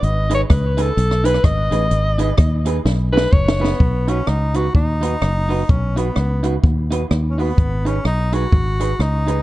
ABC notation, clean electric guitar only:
X:1
M:4/4
L:1/16
Q:"Swing" 1/4=127
K:Bmix
V:1 name="Clean electric guitar"
z2 [DGB] z3 [DGB] z3 [DGB] z3 [DGB] z | z2 [DGB] z3 [DGB] z3 [DGB] z3 [DGB] z | z2 [DFB] z3 [DFB] z3 [DFB] z3 [DFB] z | z2 [DFB] z3 [DFB] z3 [DFB] z3 [DFB] z |
z2 [DGB] z3 [DGB] z3 [DGB] z3 [DGB] z |]